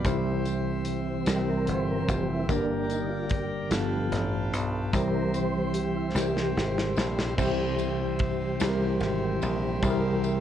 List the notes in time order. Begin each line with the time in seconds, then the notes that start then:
Already playing: G5
0.04 C2 C3 E3 G3 C4 D#4 G4 C5 E5 C6, kick, closed hi-hat, tambourine
0.12 E4
0.45 closed hi-hat, tambourine
0.85 closed hi-hat
1.26 C2 G3 C4 E4 G4 A#4, snare, closed hi-hat, tambourine
1.49 A#4
1.67 G1 C5, closed hi-hat
1.90 A#4
2.08 F1 G4, kick, closed hi-hat, tambourine
2.31 E4
2.48 G1 G2 D3 G3 A#3 D4 G4 A#4 D5 A#5, kick, closed hi-hat, tambourine
2.90 D#4, closed hi-hat, tambourine
3.10 F4
3.29 G4, kick, closed hi-hat
3.68 G1 G2 F3 A3 B3 D4 F4 G4 B4 F5 A5, snare, closed hi-hat, tambourine
3.73 A4
4.11 A1, snare, closed hi-hat
4.53 B1, closed hi-hat, tambourine
4.92 C2 C3 E3 G3 C4 E4 G4 A#4 C5 E5 C6, kick, closed hi-hat, tambourine
5.34 C5, closed hi-hat, tambourine
5.74 G4, closed hi-hat
5.95 E4
6.15 C2 E3 G3 C4 E4 G4 A#4, snare, tambourine
6.23 C5
6.37 snare
6.57 G#1, snare
6.78 snare
6.97 A#1, snare, tambourine
7.19 snare
7.38 C2 C3 E3 G3 C4 E4 G4 C5 E5 G5 C6, kick, crash, tambourine
7.79 ride, tambourine
8.19 kick, ride
8.60 C2 G3 C4 E4 G4 G#4, snare, ride, tambourine
8.68 A#4
9.00 G#1, snare, ride
9.42 A#1, ride, tambourine
9.82 C2 C3 G3 C4 E4 G4 G#4, kick, ride, tambourine
9.90 A#4
10.24 ride, tambourine